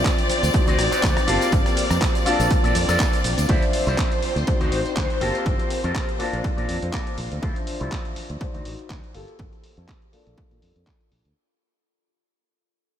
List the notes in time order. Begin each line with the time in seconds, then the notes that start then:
Already playing: F3 C4 D4 C5 D5 E5
0.05 kick, clap, closed hi-hat, tambourine, cabasa
0.18 muted clean electric guitar stroke, closed hi-hat, tambourine
0.30 muted fingered electric bass stroke, open hi-hat, ride, cabasa
0.43 D2, closed hi-hat, tambourine, cabasa
0.53 D#4 F#4 C5, muted clean electric guitar stroke, kick, closed hi-hat, tambourine, cabasa
0.67 D2 D#4 F#4 C5 D#5, closed hi-hat, tambourine, cabasa
0.79 A1, cross-stick, open hi-hat, ride, cabasa
0.92 D#4 F#4 C5 D5, closed hi-hat, tambourine, cabasa
1.03 D2, kick, clap, closed hi-hat, tambourine, cabasa
1.17 cross-stick, closed hi-hat, tambourine, cabasa
1.27 G1 A#3 F4 G4 A4 A#4 F5 A5, open hi-hat, ride, cabasa
1.41 closed hi-hat, tambourine, cabasa
1.52 G1, kick, closed hi-hat, tambourine, cabasa
1.66 cross-stick, closed hi-hat, tambourine, cabasa
1.77 open hi-hat, ride, cabasa
1.91 F2, cross-stick, closed hi-hat, tambourine, cabasa
2.02 kick, clap, closed hi-hat, tambourine, cabasa
2.14 muted clean electric guitar stroke, closed hi-hat, tambourine, cabasa
2.25 A#3 D4 F4 A4 A#4 D5 A5, muted fingered electric bass stroke, open hi-hat, ride, cabasa
2.40 A#1, closed hi-hat, tambourine, cabasa
2.51 kick, closed hi-hat, tambourine, cabasa
2.63 A#2 F4 A4 A#4 D5, closed hi-hat, tambourine, cabasa
2.75 F2, open hi-hat, ride, cabasa
2.88 F2 F4 A4 A#4 D5, cross-stick, closed hi-hat, tambourine, cabasa
3.00 kick, clap, closed hi-hat, tambourine, cabasa
3.13 closed hi-hat, tambourine, cabasa
3.24 A#1, open hi-hat, ride, cabasa
3.38 D2, closed hi-hat, tambourine, cabasa
3.48 D2 F3 C4 D4 E4 F4 C5 E5, kick, closed hi-hat, tambourine
3.62 closed hi-hat, tambourine
3.73 muted clean electric guitar stroke, open hi-hat
3.87 C2 E4 F4 C5, closed hi-hat, tambourine
3.98 kick, clap, closed hi-hat
4.12 closed hi-hat, tambourine
4.23 muted fingered electric bass stroke, open hi-hat
4.36 D2, muted clean electric guitar stroke, closed hi-hat, tambourine
4.47 D#4 F#4 C5 D5, muted clean electric guitar stroke, kick, closed hi-hat
4.60 D2 D#4 F#4 C5, closed hi-hat, tambourine
4.72 A1, open hi-hat
4.86 muted fingered electric bass stroke, closed hi-hat, tambourine
4.96 D2 D#4 F#4 C5, kick, clap, closed hi-hat
5.10 closed hi-hat, tambourine
5.20 G1 A#3 F4 G4 A4 A#4 A5, open hi-hat
5.35 closed hi-hat, tambourine
5.46 G1, kick, closed hi-hat, tambourine
5.59 closed hi-hat, tambourine
5.70 muted clean electric guitar stroke, open hi-hat
5.83 F2 F4 A4 A#4, closed hi-hat, tambourine
5.95 kick, clap, closed hi-hat
6.09 closed hi-hat, tambourine
6.19 A#3 D4 F4 A4 A#4 A5, muted fingered electric bass stroke, open hi-hat
6.33 A#1, closed hi-hat, tambourine
6.44 kick, closed hi-hat
6.57 A#2 D4 A4 A#4, closed hi-hat, tambourine
6.69 F2, open hi-hat
6.82 F2, closed hi-hat, tambourine
6.93 D4 A4 A#4, kick, clap, closed hi-hat
7.07 closed hi-hat
7.18 A#1, open hi-hat
7.31 D2, closed hi-hat, tambourine
7.42 D2 F3 D4 E4 F4 C5 E5, kick, closed hi-hat
7.56 closed hi-hat
7.67 muted clean electric guitar stroke, open hi-hat
7.80 C2 E4 F4 C5, closed hi-hat
7.92 kick, clap, closed hi-hat
8.05 closed hi-hat
8.16 muted fingered electric bass stroke, open hi-hat
8.29 D2, muted clean electric guitar stroke, closed hi-hat, tambourine
8.40 D#4 F#4 C5 D5, muted clean electric guitar stroke, kick, closed hi-hat
8.54 D2 D#4 F#4 C5, closed hi-hat
8.65 A1, open hi-hat
8.79 closed hi-hat
8.90 D2 D#4 F#4 C5, kick, clap, closed hi-hat
9.04 closed hi-hat
9.14 G1 A#3 F4 G4 A4, open hi-hat
9.28 closed hi-hat
9.39 G1, kick, closed hi-hat
9.53 closed hi-hat
9.63 muted clean electric guitar stroke, open hi-hat
9.77 F2 A#3 F4 A4, closed hi-hat
9.88 kick, clap, closed hi-hat
10.02 closed hi-hat
10.12 A#3 D4 F4 A4, muted fingered electric bass stroke, open hi-hat
10.27 A#1, closed hi-hat
10.38 kick, closed hi-hat
10.50 A#2 A#3 D4 A4, closed hi-hat
10.62 F2, open hi-hat
10.76 F2, closed hi-hat
10.87 kick, clap, closed hi-hat
11.01 closed hi-hat
11.12 A#1, open hi-hat
11.25 D2, closed hi-hat